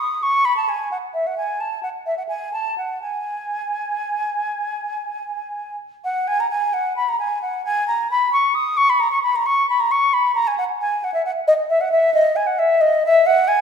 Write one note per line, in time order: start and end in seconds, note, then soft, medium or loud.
0.00 0.24 D#6 medium
0.23 0.47 C#6 loud
0.45 0.56 B5 medium
0.57 0.70 A5 medium
0.69 0.91 G#5 medium
0.91 0.97 F#5 medium
1.14 1.28 E5 medium
1.27 1.37 F#5 medium
1.38 1.62 G#5 medium
1.60 1.82 A5 medium
1.83 1.89 F#5 medium
2.06 2.17 E5 medium
2.17 2.23 F#5 medium
2.29 2.52 G#5 medium
2.53 2.77 A5 medium
2.78 3.02 F#5 medium
3.02 5.76 G#5 medium
6.04 6.29 F#5 loud
6.28 6.42 G#5 loud
6.40 6.50 A#5 medium
6.50 6.75 G#5 medium
6.73 6.96 F#5 medium
6.96 7.10 B5 medium
7.09 7.19 A#5 medium
7.20 7.41 G#5 medium
7.42 7.65 F#5 medium
7.65 7.87 G#5 loud
7.88 8.11 A#5 medium
8.11 8.32 B5 loud
8.33 8.56 C#6 loud
8.55 8.79 D#6 medium
8.77 8.91 C#6 loud
8.90 9.02 B5 medium
9.00 9.11 A#5 loud
9.12 9.22 C#6 medium
9.23 9.37 B5 medium
9.36 9.48 A#5 medium
9.46 9.69 C#6 loud
9.69 9.82 B5 medium
9.80 9.93 A#5 medium
9.91 10.15 C#6 medium
10.14 10.34 B5 loud
10.35 10.49 A#5 loud
10.47 10.57 G#5 medium
10.58 10.64 F#5 medium
10.81 11.06 G#5 loud
11.04 11.13 F#5 loud
11.14 11.25 E5 medium
11.25 11.31 F#5 medium
11.48 11.54 D#5 loud
11.70 11.82 E5 loud
11.81 11.92 F#5 medium
11.92 12.14 E5 medium
12.14 12.37 D#5 loud
12.36 12.48 G#5 medium
12.47 12.60 F#5 medium
12.59 12.83 E5 loud
12.81 13.03 D#5 loud
13.05 13.28 E5 loud
13.26 13.49 F#5 loud
13.48 13.61 G#5 loud